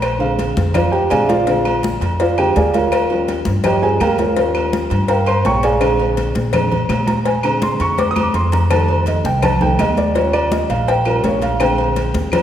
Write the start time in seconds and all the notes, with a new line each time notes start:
Already playing: A#1
0.02 C5, cowbell, high conga, low agogo, claves
0.19 D3 G#3 C4 F5, high conga, low agogo
0.39 cowbell, high conga, low agogo
0.57 F2, cowbell, high conga
0.74 F4 C5 D5 F5, cowbell, high conga, low conga, low agogo, claves
0.92 G4 G5, high conga, low agogo
1.10 A#1 D3 G#3 C4 G#4 D5 F5 G#5, cowbell, high conga, low agogo, claves
1.24 E5
1.29 F4 C5 D5 F5, cowbell, high conga
1.47 D3 G#3 C4, cowbell, high conga, low agogo
1.65 high conga, low agogo, claves
1.83 cowbell, high conga
2.01 F2, cowbell, high conga, low agogo
2.20 F4 C5 D5 F5, cowbell, high conga, low agogo
2.38 D3 G#3 C4 G4 G5, high conga, low agogo, claves
2.56 D#2 G#4 D5 F5 G#5, cowbell, high conga
2.74 F4 A#4 C#5 F5, cowbell, high conga, low agogo
2.92 cowbell, high conga, low agogo, claves
3.10 F3 G3 C#4, high conga, low agogo
3.28 cowbell, high conga, low agogo
3.45 G2, cowbell, high conga
3.64 G4 C#5 D#5 G5, cowbell, high conga, low conga, low agogo, claves
3.82 F3 G3 C#4 G#4 G#5, high conga, low agogo
4.00 D#2 A#4 F5 G5 A#5, cowbell, high conga, low timbale, low agogo, claves
4.18 F4 A#4 C#5 F5, cowbell, high conga
4.36 F3 G3 C#4, cowbell, high conga, low agogo
4.55 high conga, low agogo, claves
4.73 cowbell, high conga
4.90 G2, cowbell, high conga, low agogo
5.08 A#4 F5 G5 A#5, cowbell, high conga, low agogo
5.26 C5 C6, high conga, low agogo, claves
5.45 A#1 C#5 G5 A#5 C#6, cowbell, high conga, low timbale
5.63 G#4 D5 F5 G#5, cowbell, low agogo
5.81 D3 G#3 C4, cowbell, high conga, low agogo, claves
6.00 high conga, low agogo
6.17 cowbell, high conga, low agogo
6.35 A#2, cowbell, high conga
6.53 D3 G#3 C4, cowbell, high conga, low conga, low agogo, claves
6.72 high conga, low conga, low agogo
6.89 A#2, cowbell, high conga, low timbale, low agogo, claves
7.07 A#5, cowbell, high conga
7.25 G#5, cowbell, high conga, low agogo
7.43 D3 G#3 C4 A#5, high conga, low agogo, claves
7.62 C6, cowbell, high conga
7.80 F2 C#6, cowbell, high conga, low agogo
7.98 D6, cowbell, high conga, low agogo
8.11 D#6
8.16 high conga, low agogo, claves
8.23 D6
8.34 F2 C6, cowbell
8.52 A#5, cowbell, low conga, low agogo
8.70 D#3 G3 A3 A5, cowbell, high conga, low agogo, claves
8.88 C5, high conga, low agogo
9.06 D#5, cowbell, high conga, low agogo
9.24 C2 G5, cowbell, high conga
9.42 A5, cowbell, high conga, low conga, low agogo, claves
9.61 D#3 G3 A3 G5, high conga, low conga, low agogo
9.79 D#2 D#5, cowbell, high conga, low timbale, low agogo, claves
9.97 D5, cowbell, high conga
10.15 F3 G3 C#4 C#5, cowbell, high conga, low agogo
10.33 D5, high conga, low agogo, claves
10.52 D#5, cowbell, high conga
10.70 A#1 F5, cowbell, high conga, low agogo
10.88 G5, cowbell, high conga, low agogo
11.05 F3 G3 C#4 A#4, high conga, low agogo, claves
11.24 A#1 C#5, cowbell, high conga, low timbale
11.42 F5, cowbell, high conga, low agogo
11.60 D3 G#3 C4 G5, cowbell, high conga, low agogo, claves
11.78 high conga, low agogo
11.96 cowbell, high conga, low agogo
12.14 D#2, cowbell, high conga
12.32 F3 G3 C#4, cowbell, high conga, low conga, low agogo, claves